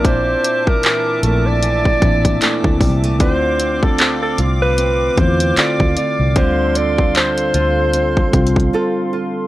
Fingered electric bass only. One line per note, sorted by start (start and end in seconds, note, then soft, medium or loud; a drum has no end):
0.00 0.35 A#1 loud
1.23 1.93 A#1 medium
2.02 2.37 A1 loud
2.64 2.82 D2 loud
2.81 3.20 C2 medium
3.20 4.35 D2 loud
4.39 5.08 C2 medium
5.17 5.52 E2 medium
5.57 muted fingered electric bass stroke soft
5.80 5.95 D2 loud
6.20 6.34 C2 loud
6.36 7.50 D2 loud
7.54 8.24 D2 medium
8.33 8.68 C2 loud